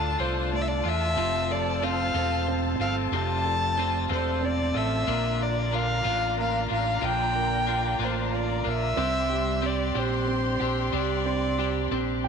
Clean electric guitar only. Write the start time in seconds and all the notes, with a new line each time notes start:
Already playing: D3 A3 D4 F4
0.19 D3 A3 D4 F4
0.84 A3 D4 F4
1.16 F2 C3 F3 A3 C4 F4
1.82 F3 A3 C4 F4
2.14 C3 F3 A3 C4 F4
2.80 F3 A3 C4 F4
3.12 F2 C3 F3 A3 C4 F4
3.77 F3 A3 C4 F4
4.09 C3 F3 A3 C4 F4
4.74 F3 A3 C4 F4
5.07 A#2 D3 A#3 D4 F4
5.71 D3 A#3 D4 F4
6.04 D3 A#3 D4 F4
6.68 A#3 D4 F4
7.01 A#2 D3 A#3 D4 F4
7.67 D3 A#3 D4 F4
7.99 D3 A#3 D4 F4
8.64 A#3 D4 F4
8.97 C3 G3 C4 D4 G4
9.62 G3 C4 D4 G4
9.94 C3 G3 C4 D4 G4
10.60 C4 D4 G4
10.92 C3 G3 C4 D4 G4
11.58 G3 C4 D4 G4
11.91 C3 G3 C4 D4 G4